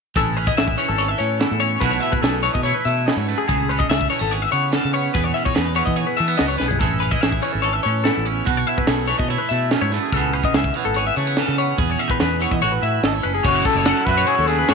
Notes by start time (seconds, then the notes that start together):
0.16 A1 E3 C#4 E4 G#4 A4, kick, closed hi-hat
0.37 C#4 B4, closed hi-hat
0.47 E4 D#5, kick
0.57 A1 G#4 E5, snare, closed hi-hat
0.68 kick
0.77 E3 C#4 C#5, closed hi-hat
0.88 G#1 A4
0.98 A4 C#5, closed hi-hat
1.09 E5
1.18 A2 C#4 C#5, closed hi-hat
1.40 E2 E4 A4, snare, closed hi-hat
1.51 A2
1.60 C#4 C#5, closed hi-hat
1.80 B1 B2 E3 A3 E4 F#4 B4, kick, closed hi-hat
1.91 C#5
2.00 E4 E5, closed hi-hat
2.12 B4, kick
2.22 B1 G#4 A4, snare, closed hi-hat
2.43 E3 A3 C#5, closed hi-hat
2.54 B2 D#5, kick
2.63 E4 C#5, closed hi-hat
2.74 B4
2.85 B2 A3 E5, closed hi-hat
3.06 F#2 E4 D#5, snare, closed hi-hat
3.17 G#2 C#5
3.27 A3 B4, closed hi-hat
3.38 G#4
3.48 C#2 C#3 G#4, kick, closed hi-hat
3.69 C#4 B4, closed hi-hat
3.79 D#5, kick
3.89 C#2 G#4 E5, snare, closed hi-hat
4.01 kick
4.10 E3 A3 C#5, closed hi-hat
4.19 G#1 B3 A4
4.31 G#4 C#5, closed hi-hat
4.42 E5
4.51 C#3 B3 C#5, closed hi-hat
4.72 C#3 C#4 A4, snare, closed hi-hat
4.85 C#3
4.94 B3 C#5, closed hi-hat
5.14 E2 G#4 B4, kick, closed hi-hat
5.24 C#5
5.34 C#4 E5, closed hi-hat
5.45 D#4 C#5, kick
5.55 E2 G#4 B4, snare, closed hi-hat
5.75 E3 B3 C#5, closed hi-hat
5.85 E3 D#5, kick
5.96 G#4 C#5, closed hi-hat
6.07 B4
6.17 E3 A3 E5, closed hi-hat
6.28 B3
6.37 C#2 F#2 D#5, snare, closed hi-hat
6.48 C#5
6.58 B1 G#2 B4, snare
6.68 G#4, floor tom
6.79 A1 E3 C#4 E4 G#4 A4, kick, closed hi-hat
7.00 C#4 B4, closed hi-hat
7.11 E4 D#5, kick
7.21 A1 G#4 E5, snare, closed hi-hat
7.32 kick
7.43 E3 C#4 C#5, closed hi-hat
7.52 G#1 A4
7.62 A4 C#5, closed hi-hat
7.73 E5
7.83 A2 C#4 C#5, closed hi-hat
8.04 E2 E4 A4, snare, closed hi-hat
8.17 A1
8.25 C#4 C#5, closed hi-hat
8.45 B1 B2 F#4 B4, kick, closed hi-hat
8.57 C#5
8.67 E4 E5, closed hi-hat
8.78 B4, kick
8.87 B1 G#4 A4, snare, closed hi-hat
9.08 E3 A3 C#5, closed hi-hat
9.19 B2 D#5, kick
9.29 E4 C#5, closed hi-hat
9.38 B4
9.49 B2 A3 E5, closed hi-hat
9.71 F#2 C#4 D#5, snare, closed hi-hat
9.81 G#2 E4 C#5
9.92 A3 B4, snare, closed hi-hat
10.03 G#4
10.12 C#2 C#3 E3 B3 C#4 A4, kick, closed hi-hat
10.17 G#4
10.33 C#4 B4, closed hi-hat
10.44 D#5, kick
10.54 C#2 G#4 E5, snare, closed hi-hat
10.64 kick
10.74 E3 B3 C#5, closed hi-hat
10.85 G#1 A4
10.94 G#4 C#5, closed hi-hat
11.07 E5
11.16 C#3 A3 C#5, closed hi-hat
11.27 B3
11.37 C#3 C#4 A4, snare, closed hi-hat
11.48 C#3
11.58 B3 C#5, closed hi-hat
11.78 E2 G#4 B4, kick, closed hi-hat
11.90 C#5
11.99 C#4 E5, closed hi-hat
12.08 D#4 B4, kick
12.20 E2 G#4 B4, snare, closed hi-hat
12.40 E3 B3 C#5, closed hi-hat
12.51 E3 D#5, kick
12.61 A1 A2 F#4 C#5, closed hi-hat
12.72 B4
12.82 A2 E4 E5, closed hi-hat
13.03 G#1 A4 D#5, snare, closed hi-hat
13.13 C#5
13.23 F#1 C#4 B4, closed hi-hat
13.34 G#4
13.43 F#1 F#2 C#4 F#4 C#5, kick, crash
13.55 E4
13.65 A3 A4, kick, closed hi-hat
13.75 F#1 C#5
13.86 F#3 C#4 F#5, snare, closed hi-hat
13.97 E4
14.05 F#2 F#4 B4 E5, kick, closed hi-hat
14.17 C#5
14.27 E4 G#4 C#5, closed hi-hat
14.38 D#2 A4
14.47 C#3 A3 G#4, closed hi-hat
14.59 B4
14.68 G#2 F#4 C#5, snare, closed hi-hat